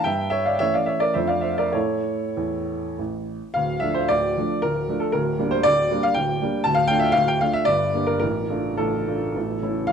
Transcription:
0.04 G2 E5 G5
0.30 C#5 E5
0.45 D5 F5
0.59 E3 A3 C#4 C#5 E5
0.74 D5 F5
0.86 C#5 E5
1.00 A#4 D5
1.14 F2 F3 A3 D4 C5 E5
1.27 D5 F5
1.41 C5 E5
1.58 A#4 D5
1.72 A2 A3 E4 A4 C#5
2.37 E2
2.99 A1
3.54 D1 D2 F5
3.80 F3 A3 D4 E5
3.94 C5
4.08 D1 D2 D5
4.37 F3 A3 D4
4.62 D1 D2 A#4
4.89 F3 A3 D4
5.00 A4
5.12 D1 D2 A#4
5.39 G3 A#3 D4
5.51 C5
5.63 D1 D2 D5
5.91 G3 A#3 D4
6.03 F5
6.14 D1 D2 G5
6.42 G3 A#3 D4
6.64 D1 D2 A5
6.75 F5
6.88 A3 D4 F4 G5
6.99 E5
7.12 D1 D2 F5
7.28 G5
7.41 A3 D4 F4 F5
7.53 E5
7.65 G1 G2 D5
7.94 A#3 D4 G4
8.07 A#4
8.20 A0 A1 A#4
8.49 A3 D4 F4
8.77 A0 A1 A4
9.08 A3 D4 F4
9.36 A0 A1
9.62 A3 C#4 E4
9.87 D1 D2 F5

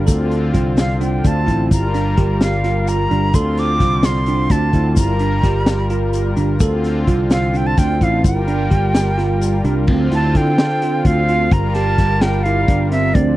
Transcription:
0.06 D2 D3 C4 F4 A4, kick, closed hi-hat, shaker
0.31 closed hi-hat
0.54 C2 F4, kick, closed hi-hat, shaker
0.77 F5, snare, closed hi-hat, shaker
1.01 D4 G5, closed hi-hat, shaker
1.24 D2 D4 A5, kick, closed hi-hat, shaker
1.47 A1 E4, kick, closed hi-hat, shaker
1.70 G1 G3 F4 A#4 A#5, kick, closed hi-hat, shaker
1.94 D4, snare, closed hi-hat, shaker
2.17 G1 G4, kick, closed hi-hat
2.41 F5, snare, closed hi-hat, shaker
2.64 F4, snare, closed hi-hat
2.88 A#5, closed hi-hat, shaker
3.11 G1 D4, closed hi-hat
3.32 D2 D3 C4 F4 A4 C6, kick, closed hi-hat, shaker
3.57 D6, snare, closed hi-hat
3.80 C2 F4, kick, snare, closed hi-hat, shaker
4.03 C6, snare, closed hi-hat, shaker
4.26 D4, closed hi-hat, shaker
4.50 D2 D4 A5, kick, closed hi-hat, shaker
4.73 D2 E4, kick, closed hi-hat, shaker
4.95 G1 G3 F4 A#4 A#5, kick, closed hi-hat, shaker
5.19 D4, closed hi-hat
5.43 G1 G4, kick, snare, closed hi-hat, shaker
5.66 snare, closed hi-hat, shaker
5.90 F4, closed hi-hat, shaker
6.13 closed hi-hat, shaker
6.37 G1 D4, closed hi-hat, shaker
6.59 D2 D3 C4 F4 A4, kick, closed hi-hat, shaker
6.84 snare, closed hi-hat
7.07 C2 F4, kick, closed hi-hat, shaker
7.31 F5, snare, closed hi-hat, shaker
7.54 D4 G5, closed hi-hat, shaker
7.67 A5
7.77 D2 D4 G5, kick, snare, closed hi-hat, shaker
8.01 A1 E4 F5, kick, closed hi-hat, shaker
8.23 G1 G3 F4 A#4 G5, kick, closed hi-hat, shaker
8.48 D4, closed hi-hat
8.71 G1 G4, kick, closed hi-hat
8.95 snare, closed hi-hat, shaker
9.18 F4, snare, closed hi-hat
9.41 closed hi-hat, shaker
9.64 C2 D4, closed hi-hat
9.86 D2 D3 C4 F4, kick, crash
10.11 D2 E4 A5, snare, closed hi-hat
10.35 D3 G5, kick, closed hi-hat
10.58 snare, closed hi-hat
10.82 F4, closed hi-hat
11.05 D2 F5, kick, closed hi-hat
11.28 F4, closed hi-hat
11.49 G1 G3 F4 A#4 A#5, kick, closed hi-hat
11.74 G4 A5, snare, closed hi-hat
11.98 G1, kick, snare, closed hi-hat
12.21 F4 G5, snare, closed hi-hat
12.44 E4 F5, closed hi-hat
12.68 G1 D4, kick, closed hi-hat
12.91 C4 E5, snare, closed hi-hat
13.14 D2 D3 F3 C4 D5, kick, closed hi-hat

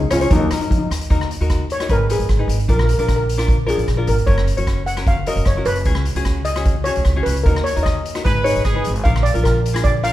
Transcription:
Already playing: G#3 D#4
0.11 C#2 C#4 F4 G#4 C#5, cross-stick, closed hi-hat
0.21 F4 G#4 C#5, closed hi-hat
0.30 D#2 F#3 D#4 F#4 A#4, kick, closed hi-hat
0.41 D#4
0.48 F#2 D#4 F#4, cross-stick, closed hi-hat
0.52 D#4 A#4
0.61 D#4, closed hi-hat
0.70 F2 D#4, kick, closed hi-hat
0.78 D#4
0.91 D#2, cross-stick, closed hi-hat
1.01 closed hi-hat
1.10 D#2 D#4 F#4 A#4, kick, closed hi-hat
1.21 cross-stick
1.31 closed hi-hat
1.41 D#2 D#4 F#4 A#4, closed hi-hat
1.50 kick, cross-stick, closed hi-hat
1.70 C#5, closed hi-hat
1.80 D#4 F#4 A#4, cross-stick, closed hi-hat
1.89 G#1 D#4 G#4 A#4 B4, kick, closed hi-hat
2.10 D#4 G#4 B4, closed hi-hat
2.19 G#1, closed hi-hat
2.29 G#1, kick, cross-stick, closed hi-hat
2.39 D#4 G#4 B4
2.48 G#1, closed hi-hat
2.59 closed hi-hat
2.68 A#1 D4 F4 A#4, kick, closed hi-hat
2.77 A#4, cross-stick
2.84 A#4
2.89 closed hi-hat
2.94 A#4
2.98 A#1 D4 F4 A#4, closed hi-hat
3.08 kick, cross-stick, closed hi-hat
3.16 A#4
3.29 closed hi-hat
3.37 D4 F4 A#4, cross-stick, closed hi-hat
3.48 kick, closed hi-hat
3.67 D4 F4 G#4 A#4, closed hi-hat
3.77 A#1, closed hi-hat
3.88 A#1, kick, cross-stick, closed hi-hat
3.97 D4 F4 A#4
4.07 G#1 A#4, closed hi-hat
4.18 closed hi-hat
4.26 F#1 C#4 F#4 A#4 C#5, kick, closed hi-hat
4.38 cross-stick
4.47 closed hi-hat
4.57 F#1 C#4 F#4 C#5, closed hi-hat
4.67 kick, cross-stick, closed hi-hat
4.86 F#5, closed hi-hat
4.96 C#4 F#4 A#4, cross-stick, closed hi-hat
5.07 F5, kick, closed hi-hat
5.26 C#4 F#4 A#4 D#5, closed hi-hat
5.36 F#1, closed hi-hat
5.45 F#1 C#5, kick, cross-stick, closed hi-hat
5.57 C#4 F#4 A#4
5.65 F#1 B4, closed hi-hat
5.75 closed hi-hat
5.85 C#2 C#4 F#4 G#4, kick, closed hi-hat
5.95 cross-stick
6.05 closed hi-hat
6.15 C#2 C#4 F#4 G#4, closed hi-hat
6.25 kick, cross-stick, closed hi-hat
6.45 D#5, closed hi-hat
6.56 C#4 F#4 G#4, cross-stick, closed hi-hat
6.65 kick, closed hi-hat
6.84 C#4 F#4 G#4 C#5, closed hi-hat
6.95 C#2, closed hi-hat
7.05 C#2, kick, cross-stick, closed hi-hat
7.16 C#4 F#4 G#4
7.23 C#2 B4, closed hi-hat
7.36 closed hi-hat
7.43 D#2 D#4 F#4 A#4, kick, closed hi-hat
7.56 cross-stick
7.64 C#5, closed hi-hat
7.76 D#2 D#4 F#4 A#4, closed hi-hat
7.83 D#5, kick, cross-stick, closed hi-hat
8.05 closed hi-hat
8.15 D#4 F#4 A#4, cross-stick, closed hi-hat
8.24 G#1 D#4 G#4 B4, kick, closed hi-hat
8.44 D#4 G#4 C#5, closed hi-hat
8.56 G#1, closed hi-hat
8.65 G#1 G#4, kick, cross-stick, closed hi-hat
8.74 D#4 G#4 B4
8.84 G#1, closed hi-hat
8.96 closed hi-hat
9.04 A#1 D4 F4 A#4 F5, kick, closed hi-hat
9.16 cross-stick
9.23 D5, closed hi-hat
9.34 A#1 D4 F4 A#4, closed hi-hat
9.44 A#4, kick, cross-stick, closed hi-hat
9.66 closed hi-hat
9.73 D4 F4 G#4, cross-stick, closed hi-hat
9.84 D5, kick, closed hi-hat
10.03 D4 F4 A#4 F5, closed hi-hat

